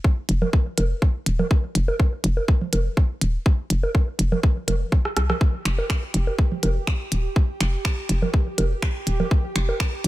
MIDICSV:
0, 0, Header, 1, 4, 480
1, 0, Start_track
1, 0, Tempo, 487805
1, 1484, Time_signature, 4, 2, 24, 8
1, 9916, End_track
2, 0, Start_track
2, 0, Title_t, "Synth texture"
2, 0, Program_c, 0, 99
2, 5324, Note_on_c, 0, 67, 80
2, 9916, Note_off_c, 0, 67, 0
2, 9916, End_track
3, 0, Start_track
3, 0, Title_t, "FM bass"
3, 0, Program_c, 1, 39
3, 283, Note_on_c, 1, 29, 99
3, 440, Note_off_c, 1, 29, 0
3, 765, Note_on_c, 1, 29, 94
3, 921, Note_off_c, 1, 29, 0
3, 1243, Note_on_c, 1, 27, 81
3, 1400, Note_off_c, 1, 27, 0
3, 1723, Note_on_c, 1, 29, 97
3, 1880, Note_off_c, 1, 29, 0
3, 2203, Note_on_c, 1, 29, 107
3, 2360, Note_off_c, 1, 29, 0
3, 2683, Note_on_c, 1, 29, 90
3, 2841, Note_off_c, 1, 29, 0
3, 3163, Note_on_c, 1, 27, 86
3, 3320, Note_off_c, 1, 27, 0
3, 3642, Note_on_c, 1, 29, 97
3, 3800, Note_off_c, 1, 29, 0
3, 4121, Note_on_c, 1, 29, 99
3, 4279, Note_off_c, 1, 29, 0
3, 4602, Note_on_c, 1, 29, 76
3, 4760, Note_off_c, 1, 29, 0
3, 5082, Note_on_c, 1, 36, 77
3, 5240, Note_off_c, 1, 36, 0
3, 5562, Note_on_c, 1, 29, 93
3, 5720, Note_off_c, 1, 29, 0
3, 6044, Note_on_c, 1, 29, 101
3, 6200, Note_off_c, 1, 29, 0
3, 6525, Note_on_c, 1, 29, 99
3, 6681, Note_off_c, 1, 29, 0
3, 7004, Note_on_c, 1, 27, 79
3, 7161, Note_off_c, 1, 27, 0
3, 7484, Note_on_c, 1, 29, 94
3, 7641, Note_off_c, 1, 29, 0
3, 7963, Note_on_c, 1, 29, 102
3, 8120, Note_off_c, 1, 29, 0
3, 8443, Note_on_c, 1, 29, 99
3, 8600, Note_off_c, 1, 29, 0
3, 8923, Note_on_c, 1, 27, 83
3, 9080, Note_off_c, 1, 27, 0
3, 9403, Note_on_c, 1, 29, 96
3, 9560, Note_off_c, 1, 29, 0
3, 9883, Note_on_c, 1, 29, 105
3, 9916, Note_off_c, 1, 29, 0
3, 9916, End_track
4, 0, Start_track
4, 0, Title_t, "Drums"
4, 43, Note_on_c, 9, 36, 96
4, 142, Note_off_c, 9, 36, 0
4, 283, Note_on_c, 9, 42, 86
4, 382, Note_off_c, 9, 42, 0
4, 411, Note_on_c, 9, 61, 53
4, 411, Note_on_c, 9, 64, 85
4, 510, Note_off_c, 9, 61, 0
4, 510, Note_off_c, 9, 64, 0
4, 523, Note_on_c, 9, 36, 100
4, 622, Note_off_c, 9, 36, 0
4, 763, Note_on_c, 9, 42, 86
4, 763, Note_on_c, 9, 61, 52
4, 862, Note_off_c, 9, 42, 0
4, 862, Note_off_c, 9, 61, 0
4, 1004, Note_on_c, 9, 36, 94
4, 1102, Note_off_c, 9, 36, 0
4, 1243, Note_on_c, 9, 42, 84
4, 1342, Note_off_c, 9, 42, 0
4, 1371, Note_on_c, 9, 61, 52
4, 1371, Note_on_c, 9, 64, 88
4, 1470, Note_off_c, 9, 61, 0
4, 1470, Note_off_c, 9, 64, 0
4, 1483, Note_on_c, 9, 36, 113
4, 1582, Note_off_c, 9, 36, 0
4, 1723, Note_on_c, 9, 42, 78
4, 1822, Note_off_c, 9, 42, 0
4, 1852, Note_on_c, 9, 61, 64
4, 1950, Note_off_c, 9, 61, 0
4, 1963, Note_on_c, 9, 36, 93
4, 2062, Note_off_c, 9, 36, 0
4, 2203, Note_on_c, 9, 42, 85
4, 2302, Note_off_c, 9, 42, 0
4, 2331, Note_on_c, 9, 61, 52
4, 2430, Note_off_c, 9, 61, 0
4, 2443, Note_on_c, 9, 36, 106
4, 2542, Note_off_c, 9, 36, 0
4, 2573, Note_on_c, 9, 64, 75
4, 2671, Note_off_c, 9, 64, 0
4, 2683, Note_on_c, 9, 42, 82
4, 2685, Note_on_c, 9, 61, 49
4, 2782, Note_off_c, 9, 42, 0
4, 2784, Note_off_c, 9, 61, 0
4, 2923, Note_on_c, 9, 36, 97
4, 3022, Note_off_c, 9, 36, 0
4, 3163, Note_on_c, 9, 42, 84
4, 3261, Note_off_c, 9, 42, 0
4, 3403, Note_on_c, 9, 36, 116
4, 3501, Note_off_c, 9, 36, 0
4, 3643, Note_on_c, 9, 42, 83
4, 3741, Note_off_c, 9, 42, 0
4, 3772, Note_on_c, 9, 61, 62
4, 3871, Note_off_c, 9, 61, 0
4, 3883, Note_on_c, 9, 36, 92
4, 3982, Note_off_c, 9, 36, 0
4, 4124, Note_on_c, 9, 42, 86
4, 4222, Note_off_c, 9, 42, 0
4, 4252, Note_on_c, 9, 61, 53
4, 4252, Note_on_c, 9, 64, 88
4, 4350, Note_off_c, 9, 61, 0
4, 4350, Note_off_c, 9, 64, 0
4, 4363, Note_on_c, 9, 36, 109
4, 4462, Note_off_c, 9, 36, 0
4, 4603, Note_on_c, 9, 61, 53
4, 4603, Note_on_c, 9, 64, 85
4, 4604, Note_on_c, 9, 42, 88
4, 4701, Note_off_c, 9, 61, 0
4, 4701, Note_off_c, 9, 64, 0
4, 4702, Note_off_c, 9, 42, 0
4, 4843, Note_on_c, 9, 36, 93
4, 4941, Note_off_c, 9, 36, 0
4, 4972, Note_on_c, 9, 37, 51
4, 5070, Note_off_c, 9, 37, 0
4, 5083, Note_on_c, 9, 37, 76
4, 5083, Note_on_c, 9, 42, 88
4, 5181, Note_off_c, 9, 37, 0
4, 5181, Note_off_c, 9, 42, 0
4, 5211, Note_on_c, 9, 37, 66
4, 5212, Note_on_c, 9, 61, 51
4, 5212, Note_on_c, 9, 64, 88
4, 5310, Note_off_c, 9, 37, 0
4, 5310, Note_off_c, 9, 61, 0
4, 5310, Note_off_c, 9, 64, 0
4, 5323, Note_on_c, 9, 36, 124
4, 5422, Note_off_c, 9, 36, 0
4, 5564, Note_on_c, 9, 26, 62
4, 5564, Note_on_c, 9, 42, 91
4, 5662, Note_off_c, 9, 26, 0
4, 5662, Note_off_c, 9, 42, 0
4, 5692, Note_on_c, 9, 61, 70
4, 5790, Note_off_c, 9, 61, 0
4, 5803, Note_on_c, 9, 26, 94
4, 5803, Note_on_c, 9, 36, 100
4, 5901, Note_off_c, 9, 36, 0
4, 5902, Note_off_c, 9, 26, 0
4, 6043, Note_on_c, 9, 42, 91
4, 6141, Note_off_c, 9, 42, 0
4, 6172, Note_on_c, 9, 61, 56
4, 6271, Note_off_c, 9, 61, 0
4, 6283, Note_on_c, 9, 36, 111
4, 6382, Note_off_c, 9, 36, 0
4, 6413, Note_on_c, 9, 64, 82
4, 6511, Note_off_c, 9, 64, 0
4, 6523, Note_on_c, 9, 42, 92
4, 6524, Note_on_c, 9, 61, 56
4, 6622, Note_off_c, 9, 42, 0
4, 6622, Note_off_c, 9, 61, 0
4, 6763, Note_on_c, 9, 26, 93
4, 6763, Note_on_c, 9, 36, 102
4, 6861, Note_off_c, 9, 36, 0
4, 6862, Note_off_c, 9, 26, 0
4, 7004, Note_on_c, 9, 42, 87
4, 7102, Note_off_c, 9, 42, 0
4, 7243, Note_on_c, 9, 36, 120
4, 7342, Note_off_c, 9, 36, 0
4, 7484, Note_on_c, 9, 26, 59
4, 7484, Note_on_c, 9, 42, 91
4, 7582, Note_off_c, 9, 26, 0
4, 7582, Note_off_c, 9, 42, 0
4, 7723, Note_on_c, 9, 26, 98
4, 7723, Note_on_c, 9, 36, 105
4, 7821, Note_off_c, 9, 36, 0
4, 7822, Note_off_c, 9, 26, 0
4, 7963, Note_on_c, 9, 42, 89
4, 8062, Note_off_c, 9, 42, 0
4, 8092, Note_on_c, 9, 61, 56
4, 8092, Note_on_c, 9, 64, 92
4, 8190, Note_off_c, 9, 61, 0
4, 8190, Note_off_c, 9, 64, 0
4, 8203, Note_on_c, 9, 36, 109
4, 8301, Note_off_c, 9, 36, 0
4, 8444, Note_on_c, 9, 42, 96
4, 8444, Note_on_c, 9, 61, 59
4, 8542, Note_off_c, 9, 42, 0
4, 8543, Note_off_c, 9, 61, 0
4, 8683, Note_on_c, 9, 26, 94
4, 8683, Note_on_c, 9, 36, 104
4, 8781, Note_off_c, 9, 36, 0
4, 8782, Note_off_c, 9, 26, 0
4, 8924, Note_on_c, 9, 42, 93
4, 9022, Note_off_c, 9, 42, 0
4, 9052, Note_on_c, 9, 61, 57
4, 9052, Note_on_c, 9, 64, 96
4, 9150, Note_off_c, 9, 61, 0
4, 9150, Note_off_c, 9, 64, 0
4, 9163, Note_on_c, 9, 36, 127
4, 9261, Note_off_c, 9, 36, 0
4, 9403, Note_on_c, 9, 26, 56
4, 9403, Note_on_c, 9, 42, 89
4, 9502, Note_off_c, 9, 26, 0
4, 9502, Note_off_c, 9, 42, 0
4, 9532, Note_on_c, 9, 61, 70
4, 9631, Note_off_c, 9, 61, 0
4, 9643, Note_on_c, 9, 26, 96
4, 9643, Note_on_c, 9, 36, 101
4, 9741, Note_off_c, 9, 36, 0
4, 9742, Note_off_c, 9, 26, 0
4, 9883, Note_on_c, 9, 42, 99
4, 9916, Note_off_c, 9, 42, 0
4, 9916, End_track
0, 0, End_of_file